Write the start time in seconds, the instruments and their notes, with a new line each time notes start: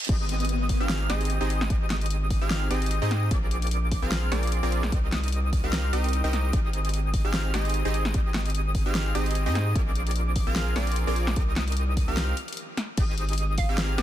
0.00 closed hi-hat
0.05 closed hi-hat
0.09 sub bass G#1, supersaw synth C4 D#4 G4 G#4 D#5, digital synth lead D#6, kick, closed hi-hat, crash, downlifter
0.29 closed hi-hat
0.40 closed hi-hat
0.45 closed hi-hat
0.49 closed hi-hat
0.69 kick, open hi-hat
0.80 sub bass G#1, supersaw synth C4 D#4 G4 G#4 F5, digital synth lead F6
0.89 snare, closed hi-hat
1.10 sub bass G#1, supersaw synth C4 D#4 G4 G#4 D#5, digital synth lead D#6, snare, closed hi-hat
1.21 closed hi-hat
1.25 closed hi-hat
1.30 closed hi-hat
1.41 sub bass G#1, supersaw synth C4 D#4 G4 G#4 D#5, digital synth lead D#6
1.50 closed hi-hat
1.61 snare
1.70 sub bass G#1, supersaw synth C4 D#4 G4 G#4 D#5, digital synth lead D#6, kick, closed hi-hat
1.90 snare, closed hi-hat
2.01 closed hi-hat
2.06 closed hi-hat
2.10 closed hi-hat
2.30 kick, open hi-hat
2.41 sub bass G#1, supersaw synth C4 D#4 G4 G#4 F5, digital synth lead F6
2.51 snare, closed hi-hat
2.71 sub bass G#1, supersaw synth C4 D#4 G4 G#4 D#5, digital synth lead D#6, closed hi-hat
2.82 closed hi-hat
2.86 closed hi-hat
2.91 closed hi-hat
3.02 sub bass G#2, supersaw synth C4 D#4 G4 G#4 D#5, digital synth lead D#6
3.11 snare, closed hi-hat
3.31 sub bass A#1, supersaw synth C4 F4 G#4 A#4 D5, digital synth lead D6, kick, closed hi-hat
3.51 closed hi-hat
3.62 closed hi-hat
3.67 closed hi-hat
3.71 closed hi-hat
3.92 kick, open hi-hat
4.02 sub bass A#1, supersaw synth C4 F4 G#4 A#4 F5, digital synth lead F6
4.12 snare, closed hi-hat
4.32 sub bass A#1, supersaw synth C4 F4 G#4 A#4 D5, digital synth lead D6, snare, closed hi-hat
4.43 closed hi-hat
4.47 closed hi-hat
4.52 closed hi-hat
4.63 sub bass A#1, supersaw synth C4 F4 G#4 A#4 D5, digital synth lead D6
4.72 closed hi-hat
4.83 snare
4.92 sub bass C2, supersaw synth C4 D#4 G4 A#4 D#5, digital synth lead D#6, kick, closed hi-hat
5.12 snare, closed hi-hat
5.24 closed hi-hat
5.28 closed hi-hat
5.32 closed hi-hat
5.53 kick, open hi-hat
5.64 sub bass C2, supersaw synth C4 D#4 G4 A#4 F5, digital synth lead F6
5.73 snare, closed hi-hat
5.93 sub bass C2, supersaw synth C4 D#4 G4 A#4 D#5, digital synth lead D#6, closed hi-hat
6.04 closed hi-hat
6.09 closed hi-hat
6.13 closed hi-hat
6.24 sub bass C2, supersaw synth C4 D#4 G4 A#4 D#5, digital synth lead D#6
6.33 snare, closed hi-hat
6.53 sub bass G#1, supersaw synth C4 D#4 G4 G#4 D#5, digital synth lead D#6, kick, closed hi-hat
6.73 closed hi-hat
6.85 closed hi-hat
6.89 closed hi-hat
6.94 closed hi-hat
7.14 kick, open hi-hat
7.25 sub bass G#1, supersaw synth C4 D#4 G4 G#4 F5, digital synth lead F6
7.34 snare, closed hi-hat
7.54 sub bass G#1, supersaw synth C4 D#4 G4 G#4 D#5, digital synth lead D#6, snare, closed hi-hat
7.65 closed hi-hat
7.70 closed hi-hat
7.74 closed hi-hat
7.85 sub bass G#1, supersaw synth C4 D#4 G4 G#4 D#5, digital synth lead D#6
7.94 closed hi-hat
8.05 snare
8.14 sub bass G#1, supersaw synth C4 D#4 G4 G#4 D#5, digital synth lead D#6, kick, closed hi-hat
8.34 snare, closed hi-hat
8.45 closed hi-hat
8.50 closed hi-hat
8.55 closed hi-hat
8.75 kick, open hi-hat
8.86 sub bass G#1, supersaw synth C4 D#4 G4 G#4 F5, digital synth lead F6
8.95 snare, closed hi-hat
9.15 sub bass G#1, supersaw synth C4 D#4 G4 G#4 D#5, digital synth lead D#6, closed hi-hat
9.26 closed hi-hat
9.31 closed hi-hat
9.35 closed hi-hat
9.46 sub bass G#2, supersaw synth C4 D#4 G4 G#4 D#5, digital synth lead D#6
9.55 snare, closed hi-hat
9.75 sub bass A#1, supersaw synth C4 F4 G#4 A#4 D5, digital synth lead D6, kick, closed hi-hat
9.95 closed hi-hat
10.07 closed hi-hat
10.11 closed hi-hat
10.16 closed hi-hat
10.36 kick, open hi-hat
10.47 sub bass A#1, supersaw synth C4 F4 G#4 A#4 F5, digital synth lead F6
10.56 snare, closed hi-hat
10.76 sub bass A#1, supersaw synth C4 F4 G#4 A#4 D5, digital synth lead D6, snare, closed hi-hat
10.87 closed hi-hat
10.92 closed hi-hat
10.96 closed hi-hat
11.07 sub bass A#1, supersaw synth C4 F4 G#4 A#4 D5, digital synth lead D6
11.16 closed hi-hat
11.27 snare
11.36 sub bass C2, supersaw synth C4 D#4 G4 A#4 D#5, digital synth lead D#6, kick, closed hi-hat
11.56 snare, closed hi-hat
11.68 closed hi-hat
11.72 closed hi-hat
11.77 closed hi-hat
11.97 kick, open hi-hat
12.08 sub bass C2, supersaw synth C4 D#4 G4 A#4 F5, digital synth lead F6
12.17 snare, closed hi-hat
12.37 closed hi-hat
12.48 closed hi-hat
12.53 closed hi-hat
12.57 closed hi-hat
12.77 snare, closed hi-hat
12.97 sub bass G#1, supersaw synth C4 D#4 G4 G#4 D#5, digital synth lead D#6, kick, closed hi-hat, crash
13.18 closed hi-hat
13.29 closed hi-hat
13.33 closed hi-hat
13.38 closed hi-hat
13.58 synth pluck F5, kick, open hi-hat
13.69 sub bass G#1, supersaw synth C4 D#4 G4 G#4 F5, digital synth lead F6
13.78 snare, closed hi-hat
13.98 sub bass G#1, supersaw synth C4 D#4 G4 G#4 D#5, digital synth lead D#6, snare, closed hi-hat